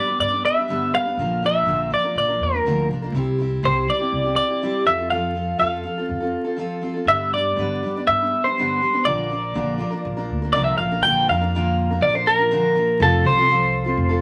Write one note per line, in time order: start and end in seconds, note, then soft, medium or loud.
0.00 0.19 D5 medium
0.08 0.33 G3 soft
0.08 0.32 B3 soft
0.08 0.31 D4 soft
0.08 0.30 B4 medium
0.19 0.41 G2 medium
0.19 0.45 D5 medium
0.32 0.57 G3 soft
0.32 0.57 B3 soft
0.32 0.56 D4 soft
0.32 0.56 B4 medium
0.45 0.94 E5 loud
0.57 0.68 G3 soft
0.57 0.69 B3 soft
0.57 0.69 D4 medium
0.57 0.68 B4 soft
0.68 0.92 G2 medium
0.68 0.93 D3 medium
0.68 0.91 G3 medium
0.68 0.92 B3 medium
0.68 0.93 D4 medium
0.68 0.93 B4 medium
0.93 1.04 G3 medium
0.93 1.05 D4 medium
0.93 1.05 B4 medium
0.93 1.44 F5 loud
1.06 1.19 G3 soft
1.06 1.18 B3 soft
1.06 1.18 D4 soft
1.06 1.17 B4 medium
1.17 1.62 A#1 medium
1.17 1.42 A#2 medium
1.17 1.42 D3 medium
1.17 1.41 F3 medium
1.17 1.43 A#3 medium
1.17 1.43 D4 medium
1.17 1.43 A#4 medium
1.42 1.66 F3 medium
1.42 1.67 A#3 medium
1.42 1.67 D4 medium
1.42 1.67 A#4 medium
1.42 1.93 E5 medium
1.65 1.88 A#1 medium
1.65 1.91 A#2 medium
1.65 1.91 D3 medium
1.65 1.89 F3 medium
1.65 1.91 A#3 medium
1.65 1.91 D4 medium
1.65 1.92 A#4 medium
1.90 2.03 F3 medium
1.90 2.03 A#3 soft
1.90 2.03 D4 medium
1.90 2.02 A#4 medium
1.90 2.17 D5 medium
2.03 2.29 F3 soft
2.03 2.28 A#3 soft
2.03 2.28 D4 soft
2.03 2.27 A#4 soft
2.15 2.37 A#1 medium
2.15 2.42 D5 medium
2.28 2.54 F3 soft
2.28 2.53 A#3 soft
2.28 2.53 D4 soft
2.28 2.51 A#4 medium
2.40 2.62 E2 medium
2.40 2.87 A#4 medium
2.53 2.66 F3 soft
2.53 2.66 A#3 soft
2.53 2.65 D4 soft
2.53 2.64 A#4 soft
2.65 2.87 D2 medium
2.65 2.90 A#2 medium
2.65 2.90 D3 medium
2.65 2.90 F3 medium
2.65 2.90 A#3 medium
2.65 2.90 D4 medium
2.65 2.90 A#4 medium
2.89 3.11 C2 medium
2.89 3.02 F3 medium
2.89 3.03 A#3 medium
2.89 3.03 D4 medium
2.94 3.01 A#4 medium
3.02 3.15 F3 soft
3.02 3.15 A#3 soft
3.02 3.15 D4 medium
3.02 3.14 A#4 medium
3.12 3.58 C2 medium
3.12 3.38 C3 medium
3.12 3.37 G3 medium
3.12 3.39 C4 medium
3.16 3.39 E4 medium
3.16 3.40 G4 medium
3.38 3.62 G3 medium
3.38 3.62 C4 medium
3.38 3.63 E4 medium
3.38 3.64 G4 medium
3.62 3.85 C2 medium
3.62 3.87 C3 medium
3.62 3.86 G3 medium
3.62 3.86 C4 medium
3.62 3.87 E4 medium
3.62 3.88 G4 medium
3.62 3.89 C5 medium
3.87 3.99 G3 medium
3.87 4.00 C4 medium
3.87 4.00 E4 medium
3.87 4.35 D5 medium
3.99 4.25 C4 soft
3.99 4.25 E4 soft
3.99 4.23 G4 soft
4.12 4.34 C2 medium
4.24 4.50 C4 soft
4.24 4.49 E4 soft
4.24 4.47 G4 medium
4.36 4.86 D5 medium
4.48 4.62 C4 soft
4.48 4.62 E4 soft
4.48 4.61 G4 medium
4.62 4.86 C3 medium
4.62 4.86 G3 medium
4.62 4.86 C4 medium
4.62 4.87 E4 medium
4.62 4.87 G4 medium
4.85 5.55 F2 medium
4.85 4.98 F3 medium
4.85 4.99 C4 medium
4.85 4.97 F4 medium
4.85 4.97 A4 medium
4.85 5.09 E5 medium
4.98 5.10 C4 soft
4.98 5.11 F4 soft
4.98 5.10 A4 soft
5.10 5.33 F3 medium
5.10 5.34 C4 medium
5.10 5.35 F4 medium
5.10 5.36 A4 medium
5.10 5.58 F5 loud
5.34 5.58 F3 medium
5.34 5.59 C4 medium
5.34 5.59 F4 medium
5.34 5.60 A4 medium
5.59 5.81 F2 medium
5.59 5.82 F3 medium
5.59 5.83 C4 medium
5.59 5.84 F4 medium
5.59 5.85 A4 medium
5.59 6.54 F5 medium
5.83 5.96 F3 medium
5.83 5.97 C4 medium
5.83 5.97 F4 medium
5.83 5.97 A4 medium
5.98 6.23 C4 soft
5.98 6.21 F4 soft
5.98 6.19 A4 soft
6.09 6.31 F2 medium
6.20 6.46 C4 medium
6.20 6.45 F4 medium
6.20 6.43 A4 medium
6.44 6.57 C4 medium
6.44 6.57 F4 soft
6.44 6.58 A4 medium
6.57 6.80 F3 medium
6.57 6.81 C4 medium
6.57 6.82 F4 medium
6.57 6.83 A4 loud
6.82 6.95 F3 medium
6.82 6.95 C4 medium
6.82 6.95 F4 medium
6.82 6.93 A4 medium
6.94 7.08 C4 soft
6.94 7.08 F4 soft
6.94 7.07 A4 medium
7.05 7.52 G2 medium
7.05 7.32 G2 medium
7.05 7.32 D3 medium
7.05 7.32 G3 medium
7.05 7.33 B3 medium
7.05 7.33 D4 medium
7.05 7.33 B4 medium
7.05 7.33 E5 loud
7.34 7.58 G3 medium
7.34 7.57 B3 medium
7.34 7.58 D4 medium
7.34 7.58 B4 medium
7.34 8.04 D5 loud
7.56 7.79 G2 medium
7.56 7.82 G2 medium
7.56 7.83 D3 medium
7.56 7.81 G3 medium
7.56 7.83 B3 medium
7.56 7.83 D4 medium
7.56 7.83 B4 medium
7.83 7.95 G3 medium
7.83 7.96 B3 medium
7.83 7.96 D4 medium
7.83 7.95 B4 medium
7.96 8.22 G3 soft
7.96 8.21 B3 soft
7.96 8.21 D4 soft
7.96 8.20 B4 medium
8.07 8.29 G2 medium
8.07 8.45 E5 medium
8.22 8.47 G3 soft
8.22 8.46 B3 soft
8.22 8.45 D4 soft
8.22 8.45 B4 medium
8.44 8.58 G3 soft
8.44 8.58 B3 soft
8.44 8.58 D4 soft
8.44 8.57 B4 medium
8.44 9.08 C5 medium
8.58 8.82 G2 medium
8.58 8.82 D3 medium
8.58 8.80 G3 medium
8.58 8.81 B3 medium
8.58 8.82 D4 medium
8.58 8.83 B4 medium
8.81 8.94 G3 medium
8.81 8.94 B3 medium
8.81 8.92 B4 medium
8.93 9.06 G3 soft
8.93 9.07 B3 soft
8.93 9.06 D4 soft
8.93 9.06 B4 soft
9.05 9.52 A#1 medium
9.05 9.31 A#2 medium
9.05 9.31 D3 medium
9.05 9.29 F3 medium
9.05 9.30 A#3 medium
9.05 9.31 D4 medium
9.05 9.32 A#4 medium
9.05 10.50 D5 medium
9.30 9.54 F3 medium
9.30 9.54 A#3 medium
9.30 9.54 D4 medium
9.30 9.55 A#4 medium
9.54 9.78 A#1 medium
9.54 9.79 A#2 medium
9.54 9.80 D3 medium
9.54 9.77 F3 medium
9.54 9.78 A#3 medium
9.54 9.79 D4 medium
9.54 9.79 A#4 medium
9.78 9.91 F3 medium
9.78 9.91 A#3 medium
9.78 9.90 D4 medium
9.78 9.89 A#4 medium
9.90 10.17 F3 soft
9.90 10.17 A#3 soft
9.90 10.16 D4 medium
9.90 10.15 A#4 medium
10.05 10.27 A#1 medium
10.17 10.43 F3 medium
10.17 10.42 A#3 soft
10.17 10.42 D4 medium
10.17 10.41 A#4 medium
10.30 10.52 D2 medium
10.42 10.54 F3 soft
10.42 10.54 A#3 medium
10.42 10.55 D4 medium
10.42 10.54 A#4 medium
10.53 10.77 C2 medium
10.53 10.79 A#2 medium
10.53 10.79 D3 medium
10.53 10.78 F3 medium
10.53 10.79 A#3 medium
10.53 10.80 D4 medium
10.53 10.80 A#4 loud
10.53 10.64 D5 medium
10.64 10.77 E5 medium
10.78 11.01 A#1 medium
10.78 10.91 F3 medium
10.78 10.92 A#3 medium
10.78 10.92 D4 medium
10.78 11.02 F5 medium
10.82 10.91 A#4 medium
10.92 11.04 F3 soft
10.92 11.04 A#3 soft
10.92 11.04 D4 medium
10.92 11.04 A#4 medium
11.03 11.26 A#1 medium
11.03 11.28 A#2 medium
11.03 11.29 D3 medium
11.03 11.27 F3 medium
11.03 11.28 A#3 medium
11.03 11.29 D4 medium
11.03 11.29 A#4 medium
11.03 11.29 G5 loud
11.28 11.98 F2 medium
11.28 11.41 F3 medium
11.28 11.41 A#3 medium
11.28 11.41 D4 medium
11.28 11.40 A#4 medium
11.28 12.05 F5 loud
11.41 11.54 F3 soft
11.41 11.54 A#3 soft
11.41 11.54 D4 medium
11.41 11.53 A#4 medium
11.55 11.91 A#2 medium
11.55 11.91 D3 medium
11.55 11.91 F3 medium
11.55 11.91 A#3 medium
11.55 11.90 D4 medium
11.55 11.90 A#4 medium
11.91 12.15 F3 soft
11.91 12.14 A#3 soft
11.91 12.14 D4 medium
11.91 12.12 A#4 medium
12.01 12.96 A#1 medium
12.01 12.15 D5 medium
12.14 12.25 F3 medium
12.14 12.26 A#3 medium
12.14 12.27 D4 medium
12.14 12.26 A#4 medium
12.14 12.27 C5 medium
12.26 12.39 F3 medium
12.26 12.39 A#3 medium
12.26 12.39 D4 medium
12.26 13.02 A#4 medium
12.26 12.38 A#4 medium
12.39 12.51 F3 soft
12.39 12.51 A#3 soft
12.39 12.52 D4 medium
12.39 12.51 A#4 medium
12.51 12.76 A#2 medium
12.51 12.76 D3 medium
12.51 12.74 F3 medium
12.51 12.75 A#3 medium
12.51 12.75 D4 medium
12.51 12.77 A#4 loud
12.75 12.99 F3 medium
12.75 13.00 A#3 medium
12.75 13.01 D4 medium
12.75 13.01 A#4 medium
13.00 13.22 F1 loud
13.00 13.23 F3 medium
13.00 13.24 C4 medium
13.00 13.25 F4 medium
13.00 13.25 A4 medium
13.00 13.24 A4 medium
13.24 13.94 C2 medium
13.24 13.37 F3 medium
13.24 13.37 C4 medium
13.24 13.37 F4 medium
13.24 13.36 A4 medium
13.24 14.20 C5 medium
13.37 13.48 C4 soft
13.37 13.49 F4 soft
13.37 13.49 A4 medium
13.48 13.86 F3 medium
13.48 13.86 C4 medium
13.48 13.85 F4 medium
13.48 13.83 A4 medium
13.85 14.11 C4 medium
13.85 14.09 F4 medium
13.85 14.08 A4 medium
13.97 14.21 F1 medium
14.09 14.20 C4 medium
14.09 14.21 F4 medium
14.09 14.21 A4 medium